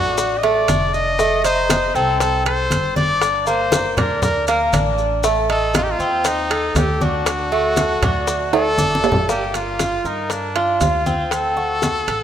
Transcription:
Already playing: upright bass A1, cuban tres D4, trumpet F#4
0.18 high bongo, high conga, maracas
0.38 trumpet D#5
0.43 cuban tres A3, trumpet D5, high bongo, high conga, high timbale
0.68 upright bass F1, cuban tres D4, high bongo, low bongo, high conga, high timbale, maracas
0.94 trumpet D#5, high bongo, maracas
1.19 cuban tres A3, high bongo, high conga, maracas
1.44 cuban tres D#4, trumpet C5, high bongo, high conga, high timbale, maracas
1.70 high bongo, high conga, high timbale, maracas
1.95 upright bass C2, cuban tres C4, trumpet A4, high conga, maracas
2.20 trumpet A4, high bongo, high conga, high timbale, maracas
2.46 cuban tres A4, trumpet C5, high bongo, high conga, high timbale
2.70 upright bass G1, high bongo, low bongo, high conga, high timbale, maracas
2.96 cuban tres D4, trumpet D5, high bongo, high conga, maracas
3.21 high bongo, high conga, high timbale, maracas
3.41 trumpet D5
3.46 cuban tres A#3, trumpet C5, high bongo, high conga, maracas
3.72 high bongo, high conga, high timbale, maracas
3.97 upright bass D2, cuban tres D4, trumpet A#4, high conga, low conga, high timbale, maracas
4.22 trumpet A#4, high bongo, high conga, low conga, maracas
4.48 cuban tres A#3, trumpet A#4, high bongo, high conga, high timbale, maracas
4.73 upright bass A1, cuban tres D4, high bongo, low bongo, high conga, high timbale, maracas
4.98 high bongo, maracas
5.24 cuban tres A3, high bongo, high conga, maracas
5.49 cuban tres D#4, trumpet A4, high bongo, high conga, high timbale
5.74 trumpet F4, high bongo, high conga, high timbale, maracas
5.83 trumpet G4
5.91 trumpet F4
5.99 upright bass D#2, cuban tres C4, high conga, maracas
6.25 trumpet D#4, high bongo, high conga, high timbale, maracas
6.50 cuban tres A4, high bongo, high conga, high timbale
6.75 upright bass D2, trumpet G4, high bongo, low bongo, high conga, high timbale, low timbale, maracas
7.01 cuban tres D4, trumpet F#4, high bongo, high conga, maracas
7.26 high bongo, high conga, high timbale, maracas
7.52 cuban tres A3, high bongo, high conga
7.77 high bongo, high conga, high timbale, maracas
8.02 upright bass D2, cuban tres D4, high conga, low conga, high timbale, maracas
8.28 high bongo, high conga, maracas
8.53 cuban tres A3, trumpet A4, high bongo, high conga, high timbale
8.78 upright bass G1, cuban tres D4, high bongo, low bongo, high conga, maracas
8.95 high conga
9.04 high bongo, low timbale, maracas
9.12 low conga
9.29 cuban tres A#3, trumpet G4, high bongo, high conga, maracas
9.54 trumpet F4, high bongo, high conga, high timbale, maracas
9.79 cuban tres F4, high bongo, high conga, high timbale, maracas
10.04 upright bass G2, trumpet D#4, cuban tres A#4, high conga, maracas
10.30 trumpet D4, high bongo, high conga, high timbale, maracas
10.56 cuban tres F4, high bongo, high conga, high timbale
10.80 upright bass D2, trumpet F4, high bongo, low bongo, high conga, high timbale, low timbale, maracas
11.06 cuban tres C4, high bongo, high conga, maracas
11.31 trumpet A4, high bongo, high conga, high timbale, maracas
11.56 cuban tres F#4, high bongo, high conga
11.82 high bongo, high conga, high timbale, maracas
12.08 upright bass A1, cuban tres A4, high conga, high timbale, maracas

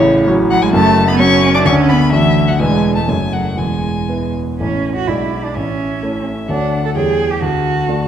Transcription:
Already playing: grand piano A1 A2, cello C#3, violin C#5
0.27 grand piano F#3 C#4 F#4
0.50 cello F#3, violin F#5
0.62 cello G#3, violin G#5
0.73 grand piano F#1 F#2, cello A3, violin A5
1.08 cello B3, violin B5
1.19 grand piano F#3 C#4 F#4, cello C#4, violin C#6
1.54 cello D4, violin D6
1.65 grand piano D2 D3, cello C#4, violin C#6
1.89 cello B3, violin B5
2.12 cello E3, grand piano A3 D4 F#4, violin E5
2.48 cello F#3, violin F#5
2.59 grand piano E1 E2 G#3 D4 B4, cello G#3, violin G#5
2.95 cello A3, violin A5
3.08 grand piano F#1 F#2 A3 C#4 F#4, cello G#3, violin G#5
3.33 cello F#3, violin F#5
3.57 grand piano E1 E2, cello G#3, violin G#5
4.09 grand piano B3 E4 B4
4.59 grand piano A1 A3 E4 C#5, cello C#4, violin C#5
4.95 cello F#4
5.07 grand piano B1 G#3 D4 D5, cello E4, violin D5
5.44 cello D4
5.55 grand piano A1, cello C#4, violin E5
6.03 grand piano A3 E4 C#5
6.49 grand piano D2 A3 F#4 C#5, cello D4, violin F#5
6.85 cello A4
6.95 grand piano E2 G3 G4 C#5, cello G#4, violin G5
7.31 cello G4
7.41 grand piano D2, cello F#4, violin A5
7.89 grand piano A3 F#4 D5

